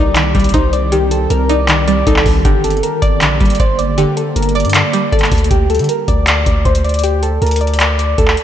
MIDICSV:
0, 0, Header, 1, 6, 480
1, 0, Start_track
1, 0, Tempo, 382166
1, 1157, Time_signature, 4, 2, 24, 8
1, 10597, End_track
2, 0, Start_track
2, 0, Title_t, "Synth keys"
2, 0, Program_c, 0, 88
2, 0, Note_on_c, 0, 74, 87
2, 408, Note_off_c, 0, 74, 0
2, 436, Note_on_c, 0, 74, 82
2, 662, Note_off_c, 0, 74, 0
2, 676, Note_on_c, 0, 72, 83
2, 901, Note_off_c, 0, 72, 0
2, 917, Note_on_c, 0, 74, 89
2, 1142, Note_off_c, 0, 74, 0
2, 1156, Note_on_c, 0, 67, 97
2, 1382, Note_off_c, 0, 67, 0
2, 1397, Note_on_c, 0, 69, 97
2, 1622, Note_off_c, 0, 69, 0
2, 1635, Note_on_c, 0, 70, 91
2, 1861, Note_off_c, 0, 70, 0
2, 1876, Note_on_c, 0, 74, 85
2, 2328, Note_off_c, 0, 74, 0
2, 2356, Note_on_c, 0, 74, 82
2, 2581, Note_off_c, 0, 74, 0
2, 2596, Note_on_c, 0, 69, 88
2, 3048, Note_off_c, 0, 69, 0
2, 3076, Note_on_c, 0, 67, 106
2, 3302, Note_off_c, 0, 67, 0
2, 3318, Note_on_c, 0, 69, 82
2, 3542, Note_off_c, 0, 69, 0
2, 3557, Note_on_c, 0, 70, 77
2, 3782, Note_off_c, 0, 70, 0
2, 3797, Note_on_c, 0, 74, 88
2, 4248, Note_off_c, 0, 74, 0
2, 4275, Note_on_c, 0, 74, 80
2, 4501, Note_off_c, 0, 74, 0
2, 4516, Note_on_c, 0, 72, 86
2, 4741, Note_off_c, 0, 72, 0
2, 4755, Note_on_c, 0, 74, 85
2, 4981, Note_off_c, 0, 74, 0
2, 4997, Note_on_c, 0, 67, 104
2, 5222, Note_off_c, 0, 67, 0
2, 5236, Note_on_c, 0, 69, 86
2, 5461, Note_off_c, 0, 69, 0
2, 5475, Note_on_c, 0, 70, 83
2, 5701, Note_off_c, 0, 70, 0
2, 5715, Note_on_c, 0, 74, 92
2, 6167, Note_off_c, 0, 74, 0
2, 6197, Note_on_c, 0, 74, 78
2, 6422, Note_off_c, 0, 74, 0
2, 6434, Note_on_c, 0, 69, 89
2, 6886, Note_off_c, 0, 69, 0
2, 6917, Note_on_c, 0, 67, 105
2, 7142, Note_off_c, 0, 67, 0
2, 7159, Note_on_c, 0, 69, 84
2, 7383, Note_off_c, 0, 69, 0
2, 7397, Note_on_c, 0, 70, 76
2, 7622, Note_off_c, 0, 70, 0
2, 7637, Note_on_c, 0, 74, 87
2, 8088, Note_off_c, 0, 74, 0
2, 8117, Note_on_c, 0, 74, 82
2, 8342, Note_off_c, 0, 74, 0
2, 8356, Note_on_c, 0, 72, 77
2, 8581, Note_off_c, 0, 72, 0
2, 8597, Note_on_c, 0, 74, 84
2, 8822, Note_off_c, 0, 74, 0
2, 8837, Note_on_c, 0, 67, 98
2, 9062, Note_off_c, 0, 67, 0
2, 9078, Note_on_c, 0, 69, 86
2, 9302, Note_off_c, 0, 69, 0
2, 9317, Note_on_c, 0, 70, 83
2, 9542, Note_off_c, 0, 70, 0
2, 9557, Note_on_c, 0, 74, 81
2, 10008, Note_off_c, 0, 74, 0
2, 10036, Note_on_c, 0, 74, 76
2, 10261, Note_off_c, 0, 74, 0
2, 10276, Note_on_c, 0, 69, 91
2, 10597, Note_off_c, 0, 69, 0
2, 10597, End_track
3, 0, Start_track
3, 0, Title_t, "Ambient pad"
3, 0, Program_c, 1, 92
3, 0, Note_on_c, 1, 51, 81
3, 0, Note_on_c, 1, 60, 76
3, 0, Note_on_c, 1, 67, 92
3, 0, Note_on_c, 1, 74, 72
3, 3038, Note_off_c, 1, 51, 0
3, 3038, Note_off_c, 1, 60, 0
3, 3038, Note_off_c, 1, 74, 0
3, 3077, Note_on_c, 1, 50, 82
3, 3077, Note_on_c, 1, 55, 73
3, 3077, Note_on_c, 1, 58, 75
3, 6866, Note_off_c, 1, 67, 0
3, 6878, Note_off_c, 1, 50, 0
3, 6878, Note_off_c, 1, 55, 0
3, 6878, Note_off_c, 1, 58, 0
3, 10597, End_track
4, 0, Start_track
4, 0, Title_t, "Synth pluck"
4, 0, Program_c, 2, 84
4, 0, Note_on_c, 2, 51, 94
4, 0, Note_on_c, 2, 63, 94
4, 178, Note_off_c, 2, 51, 0
4, 193, Note_on_c, 2, 51, 83
4, 438, Note_on_c, 2, 55, 78
4, 662, Note_off_c, 2, 63, 0
4, 677, Note_on_c, 2, 63, 99
4, 1140, Note_off_c, 2, 51, 0
4, 1155, Note_on_c, 2, 51, 84
4, 1637, Note_off_c, 2, 55, 0
4, 1863, Note_off_c, 2, 63, 0
4, 1878, Note_on_c, 2, 63, 85
4, 2100, Note_off_c, 2, 51, 0
4, 2115, Note_on_c, 2, 51, 90
4, 2358, Note_on_c, 2, 55, 81
4, 2580, Note_off_c, 2, 63, 0
4, 2595, Note_on_c, 2, 63, 96
4, 3076, Note_off_c, 2, 51, 0
4, 3076, Note_off_c, 2, 63, 0
4, 3077, Note_off_c, 2, 55, 0
4, 3079, Note_on_c, 2, 50, 90
4, 3794, Note_on_c, 2, 74, 94
4, 4017, Note_off_c, 2, 50, 0
4, 4032, Note_on_c, 2, 50, 93
4, 4275, Note_on_c, 2, 55, 82
4, 4506, Note_off_c, 2, 74, 0
4, 4521, Note_on_c, 2, 74, 90
4, 4980, Note_off_c, 2, 50, 0
4, 4995, Note_on_c, 2, 50, 102
4, 5476, Note_off_c, 2, 55, 0
4, 5706, Note_off_c, 2, 74, 0
4, 5721, Note_on_c, 2, 74, 87
4, 5939, Note_off_c, 2, 50, 0
4, 5954, Note_on_c, 2, 50, 91
4, 6196, Note_on_c, 2, 55, 79
4, 6421, Note_off_c, 2, 74, 0
4, 6436, Note_on_c, 2, 74, 94
4, 6915, Note_off_c, 2, 50, 0
4, 6916, Note_off_c, 2, 55, 0
4, 6916, Note_off_c, 2, 74, 0
4, 10597, End_track
5, 0, Start_track
5, 0, Title_t, "808-style bass"
5, 0, Program_c, 3, 38
5, 0, Note_on_c, 3, 36, 109
5, 418, Note_off_c, 3, 36, 0
5, 437, Note_on_c, 3, 36, 102
5, 667, Note_off_c, 3, 36, 0
5, 676, Note_on_c, 3, 36, 106
5, 1598, Note_off_c, 3, 36, 0
5, 1637, Note_on_c, 3, 36, 110
5, 2558, Note_off_c, 3, 36, 0
5, 2596, Note_on_c, 3, 36, 106
5, 2827, Note_off_c, 3, 36, 0
5, 2836, Note_on_c, 3, 36, 110
5, 3067, Note_off_c, 3, 36, 0
5, 3076, Note_on_c, 3, 31, 114
5, 3537, Note_off_c, 3, 31, 0
5, 3797, Note_on_c, 3, 31, 111
5, 4036, Note_on_c, 3, 34, 103
5, 4055, Note_off_c, 3, 31, 0
5, 4264, Note_off_c, 3, 34, 0
5, 4278, Note_on_c, 3, 31, 105
5, 4508, Note_off_c, 3, 31, 0
5, 4517, Note_on_c, 3, 31, 108
5, 5093, Note_off_c, 3, 31, 0
5, 5477, Note_on_c, 3, 31, 111
5, 5837, Note_on_c, 3, 43, 97
5, 5856, Note_off_c, 3, 31, 0
5, 6065, Note_off_c, 3, 43, 0
5, 6437, Note_on_c, 3, 31, 107
5, 6667, Note_off_c, 3, 31, 0
5, 6676, Note_on_c, 3, 38, 111
5, 6907, Note_off_c, 3, 38, 0
5, 6917, Note_on_c, 3, 38, 107
5, 7277, Note_on_c, 3, 50, 95
5, 7295, Note_off_c, 3, 38, 0
5, 7391, Note_off_c, 3, 50, 0
5, 7637, Note_on_c, 3, 38, 107
5, 8098, Note_off_c, 3, 38, 0
5, 8118, Note_on_c, 3, 38, 102
5, 8347, Note_off_c, 3, 38, 0
5, 8356, Note_on_c, 3, 38, 105
5, 9278, Note_off_c, 3, 38, 0
5, 9316, Note_on_c, 3, 38, 105
5, 10238, Note_off_c, 3, 38, 0
5, 10276, Note_on_c, 3, 38, 108
5, 10507, Note_off_c, 3, 38, 0
5, 10597, End_track
6, 0, Start_track
6, 0, Title_t, "Drums"
6, 196, Note_on_c, 9, 39, 120
6, 196, Note_on_c, 9, 42, 78
6, 322, Note_off_c, 9, 39, 0
6, 322, Note_off_c, 9, 42, 0
6, 436, Note_on_c, 9, 42, 42
6, 438, Note_on_c, 9, 36, 99
6, 496, Note_off_c, 9, 42, 0
6, 496, Note_on_c, 9, 42, 54
6, 556, Note_off_c, 9, 42, 0
6, 556, Note_on_c, 9, 42, 64
6, 563, Note_off_c, 9, 36, 0
6, 616, Note_off_c, 9, 42, 0
6, 616, Note_on_c, 9, 42, 72
6, 676, Note_off_c, 9, 42, 0
6, 676, Note_on_c, 9, 36, 97
6, 676, Note_on_c, 9, 42, 73
6, 802, Note_off_c, 9, 36, 0
6, 802, Note_off_c, 9, 42, 0
6, 916, Note_on_c, 9, 42, 71
6, 1042, Note_off_c, 9, 42, 0
6, 1156, Note_on_c, 9, 42, 92
6, 1282, Note_off_c, 9, 42, 0
6, 1396, Note_on_c, 9, 42, 75
6, 1522, Note_off_c, 9, 42, 0
6, 1636, Note_on_c, 9, 42, 84
6, 1762, Note_off_c, 9, 42, 0
6, 1876, Note_on_c, 9, 42, 72
6, 2002, Note_off_c, 9, 42, 0
6, 2116, Note_on_c, 9, 39, 120
6, 2116, Note_on_c, 9, 42, 77
6, 2242, Note_off_c, 9, 39, 0
6, 2242, Note_off_c, 9, 42, 0
6, 2356, Note_on_c, 9, 42, 76
6, 2482, Note_off_c, 9, 42, 0
6, 2596, Note_on_c, 9, 36, 98
6, 2596, Note_on_c, 9, 42, 75
6, 2717, Note_on_c, 9, 39, 104
6, 2722, Note_off_c, 9, 36, 0
6, 2722, Note_off_c, 9, 42, 0
6, 2836, Note_on_c, 9, 36, 96
6, 2836, Note_on_c, 9, 46, 79
6, 2842, Note_off_c, 9, 39, 0
6, 2962, Note_off_c, 9, 36, 0
6, 2962, Note_off_c, 9, 46, 0
6, 3076, Note_on_c, 9, 36, 115
6, 3076, Note_on_c, 9, 42, 88
6, 3202, Note_off_c, 9, 36, 0
6, 3202, Note_off_c, 9, 42, 0
6, 3317, Note_on_c, 9, 42, 73
6, 3397, Note_off_c, 9, 42, 0
6, 3397, Note_on_c, 9, 42, 57
6, 3477, Note_off_c, 9, 42, 0
6, 3477, Note_on_c, 9, 42, 43
6, 3557, Note_off_c, 9, 42, 0
6, 3557, Note_on_c, 9, 42, 89
6, 3682, Note_off_c, 9, 42, 0
6, 3796, Note_on_c, 9, 42, 77
6, 3797, Note_on_c, 9, 36, 96
6, 3922, Note_off_c, 9, 36, 0
6, 3922, Note_off_c, 9, 42, 0
6, 4036, Note_on_c, 9, 39, 119
6, 4036, Note_on_c, 9, 42, 81
6, 4162, Note_off_c, 9, 39, 0
6, 4162, Note_off_c, 9, 42, 0
6, 4277, Note_on_c, 9, 42, 42
6, 4278, Note_on_c, 9, 36, 98
6, 4337, Note_off_c, 9, 42, 0
6, 4337, Note_on_c, 9, 42, 51
6, 4397, Note_off_c, 9, 42, 0
6, 4397, Note_on_c, 9, 42, 62
6, 4403, Note_off_c, 9, 36, 0
6, 4457, Note_off_c, 9, 42, 0
6, 4457, Note_on_c, 9, 42, 74
6, 4517, Note_off_c, 9, 42, 0
6, 4517, Note_on_c, 9, 36, 98
6, 4517, Note_on_c, 9, 42, 73
6, 4642, Note_off_c, 9, 36, 0
6, 4643, Note_off_c, 9, 42, 0
6, 4757, Note_on_c, 9, 42, 71
6, 4882, Note_off_c, 9, 42, 0
6, 4997, Note_on_c, 9, 42, 89
6, 5122, Note_off_c, 9, 42, 0
6, 5237, Note_on_c, 9, 42, 76
6, 5362, Note_off_c, 9, 42, 0
6, 5477, Note_on_c, 9, 42, 84
6, 5557, Note_off_c, 9, 42, 0
6, 5557, Note_on_c, 9, 42, 68
6, 5637, Note_off_c, 9, 42, 0
6, 5637, Note_on_c, 9, 42, 48
6, 5717, Note_off_c, 9, 42, 0
6, 5717, Note_on_c, 9, 42, 46
6, 5777, Note_off_c, 9, 42, 0
6, 5777, Note_on_c, 9, 42, 54
6, 5837, Note_off_c, 9, 42, 0
6, 5837, Note_on_c, 9, 42, 69
6, 5897, Note_off_c, 9, 42, 0
6, 5897, Note_on_c, 9, 42, 78
6, 5957, Note_off_c, 9, 42, 0
6, 5957, Note_on_c, 9, 39, 121
6, 5957, Note_on_c, 9, 42, 81
6, 6083, Note_off_c, 9, 39, 0
6, 6083, Note_off_c, 9, 42, 0
6, 6197, Note_on_c, 9, 42, 79
6, 6323, Note_off_c, 9, 42, 0
6, 6437, Note_on_c, 9, 36, 96
6, 6437, Note_on_c, 9, 42, 48
6, 6517, Note_off_c, 9, 42, 0
6, 6517, Note_on_c, 9, 42, 54
6, 6557, Note_on_c, 9, 39, 99
6, 6562, Note_off_c, 9, 36, 0
6, 6597, Note_off_c, 9, 42, 0
6, 6597, Note_on_c, 9, 42, 60
6, 6676, Note_on_c, 9, 36, 100
6, 6677, Note_off_c, 9, 42, 0
6, 6677, Note_on_c, 9, 42, 66
6, 6677, Note_on_c, 9, 46, 77
6, 6683, Note_off_c, 9, 39, 0
6, 6757, Note_off_c, 9, 42, 0
6, 6757, Note_on_c, 9, 42, 72
6, 6802, Note_off_c, 9, 36, 0
6, 6802, Note_off_c, 9, 46, 0
6, 6837, Note_off_c, 9, 42, 0
6, 6837, Note_on_c, 9, 42, 76
6, 6916, Note_off_c, 9, 42, 0
6, 6916, Note_on_c, 9, 36, 109
6, 6916, Note_on_c, 9, 42, 87
6, 7042, Note_off_c, 9, 36, 0
6, 7042, Note_off_c, 9, 42, 0
6, 7157, Note_on_c, 9, 42, 59
6, 7217, Note_off_c, 9, 42, 0
6, 7217, Note_on_c, 9, 42, 57
6, 7277, Note_off_c, 9, 42, 0
6, 7277, Note_on_c, 9, 42, 58
6, 7337, Note_off_c, 9, 42, 0
6, 7337, Note_on_c, 9, 42, 56
6, 7397, Note_off_c, 9, 42, 0
6, 7397, Note_on_c, 9, 42, 87
6, 7522, Note_off_c, 9, 42, 0
6, 7637, Note_on_c, 9, 36, 91
6, 7637, Note_on_c, 9, 42, 73
6, 7762, Note_off_c, 9, 42, 0
6, 7763, Note_off_c, 9, 36, 0
6, 7876, Note_on_c, 9, 39, 118
6, 7877, Note_on_c, 9, 42, 75
6, 8002, Note_off_c, 9, 39, 0
6, 8002, Note_off_c, 9, 42, 0
6, 8117, Note_on_c, 9, 42, 69
6, 8118, Note_on_c, 9, 36, 94
6, 8242, Note_off_c, 9, 42, 0
6, 8243, Note_off_c, 9, 36, 0
6, 8356, Note_on_c, 9, 36, 94
6, 8357, Note_on_c, 9, 42, 46
6, 8477, Note_off_c, 9, 42, 0
6, 8477, Note_on_c, 9, 42, 78
6, 8482, Note_off_c, 9, 36, 0
6, 8597, Note_off_c, 9, 42, 0
6, 8597, Note_on_c, 9, 42, 43
6, 8657, Note_off_c, 9, 42, 0
6, 8657, Note_on_c, 9, 42, 52
6, 8717, Note_off_c, 9, 42, 0
6, 8717, Note_on_c, 9, 42, 61
6, 8777, Note_off_c, 9, 42, 0
6, 8777, Note_on_c, 9, 42, 71
6, 8837, Note_off_c, 9, 42, 0
6, 8837, Note_on_c, 9, 42, 87
6, 8962, Note_off_c, 9, 42, 0
6, 9076, Note_on_c, 9, 42, 72
6, 9202, Note_off_c, 9, 42, 0
6, 9316, Note_on_c, 9, 42, 50
6, 9376, Note_off_c, 9, 42, 0
6, 9376, Note_on_c, 9, 42, 60
6, 9436, Note_off_c, 9, 42, 0
6, 9436, Note_on_c, 9, 42, 69
6, 9496, Note_off_c, 9, 42, 0
6, 9496, Note_on_c, 9, 42, 83
6, 9556, Note_off_c, 9, 42, 0
6, 9556, Note_on_c, 9, 42, 43
6, 9636, Note_off_c, 9, 42, 0
6, 9636, Note_on_c, 9, 42, 57
6, 9716, Note_off_c, 9, 42, 0
6, 9716, Note_on_c, 9, 42, 76
6, 9796, Note_off_c, 9, 42, 0
6, 9796, Note_on_c, 9, 39, 116
6, 9796, Note_on_c, 9, 42, 74
6, 9922, Note_off_c, 9, 39, 0
6, 9922, Note_off_c, 9, 42, 0
6, 10036, Note_on_c, 9, 42, 76
6, 10162, Note_off_c, 9, 42, 0
6, 10276, Note_on_c, 9, 36, 98
6, 10276, Note_on_c, 9, 42, 71
6, 10396, Note_on_c, 9, 39, 96
6, 10402, Note_off_c, 9, 36, 0
6, 10402, Note_off_c, 9, 42, 0
6, 10516, Note_on_c, 9, 42, 59
6, 10522, Note_off_c, 9, 39, 0
6, 10597, Note_off_c, 9, 42, 0
6, 10597, End_track
0, 0, End_of_file